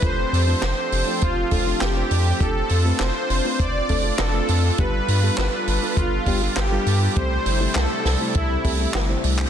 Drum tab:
HH |x-o---o-x-o-x-o-|x-o-x-o-x-o-x-o-|x-o---o-x-o-x-o-|x-o---o-x-o-x-o-|
CP |----x-------x---|----x-------x---|----x-------x---|----x-------x--x|
SD |----o-------o---|----o-------o---|----o-------o---|----o-o-----o---|
BD |o-------o-o-----|o-------o-o-----|o-------o-o-----|o-------o-o-----|